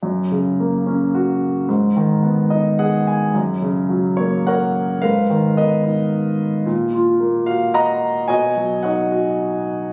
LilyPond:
<<
  \new Staff \with { instrumentName = "Grand piano" } { \time 3/4 \key fis \major \tempo 4 = 109 << { r2. | r4. dis''8 fis''8 gis''8 | r4. cis''8 fis''4 | eis''4 dis''4 r4 |
r4. eis''8 ais''4 | gis''4 fis''4 r4 | } \\ { r2. | r2. | r2 <ais' cis''>4 | <ais' b'>4 <ais' b'>4. r8 |
r2 <dis'' fis''>4 | <cis'' dis''>4 <cis'' dis''>4. r8 | } >> }
  \new Staff \with { instrumentName = "Grand piano" } { \time 3/4 \key fis \major fis,8 cis8 ais8 cis'8 fis'4 | gis,8 dis8 b8 dis'8 gis'4 | fis,8 cis8 fis8 ais4. | gis,8 dis8 b8 dis'4. |
ais,8 eis'8 ais8 fis'4. | b,8 fis8 dis'8 fis'4. | }
>>